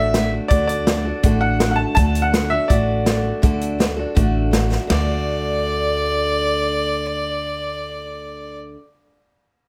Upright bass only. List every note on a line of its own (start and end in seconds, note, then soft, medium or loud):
0.00 0.37 A1 medium
0.50 1.10 D2 medium
1.24 1.83 A1 medium
1.97 2.56 D2 medium
2.70 3.29 A1 medium
3.43 4.02 D2 medium
4.17 4.76 A1 medium
4.90 8.74 D2 medium